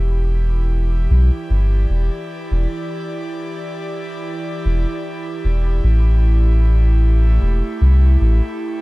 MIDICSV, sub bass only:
0, 0, Header, 1, 2, 480
1, 0, Start_track
1, 0, Key_signature, 1, "minor"
1, 0, Tempo, 789474
1, 1632, Time_signature, 4, 2, 24, 8
1, 5360, End_track
2, 0, Start_track
2, 0, Title_t, "Sub bass"
2, 0, Program_c, 0, 38
2, 0, Note_on_c, 0, 28, 89
2, 651, Note_off_c, 0, 28, 0
2, 672, Note_on_c, 0, 35, 94
2, 792, Note_off_c, 0, 35, 0
2, 912, Note_on_c, 0, 31, 84
2, 1127, Note_off_c, 0, 31, 0
2, 1152, Note_on_c, 0, 28, 82
2, 1273, Note_off_c, 0, 28, 0
2, 1527, Note_on_c, 0, 28, 90
2, 1619, Note_off_c, 0, 28, 0
2, 2829, Note_on_c, 0, 28, 83
2, 2951, Note_off_c, 0, 28, 0
2, 3311, Note_on_c, 0, 28, 85
2, 3527, Note_off_c, 0, 28, 0
2, 3549, Note_on_c, 0, 33, 89
2, 4491, Note_off_c, 0, 33, 0
2, 4511, Note_on_c, 0, 28, 96
2, 4632, Note_off_c, 0, 28, 0
2, 4750, Note_on_c, 0, 36, 85
2, 4966, Note_off_c, 0, 36, 0
2, 4991, Note_on_c, 0, 33, 82
2, 5112, Note_off_c, 0, 33, 0
2, 5360, End_track
0, 0, End_of_file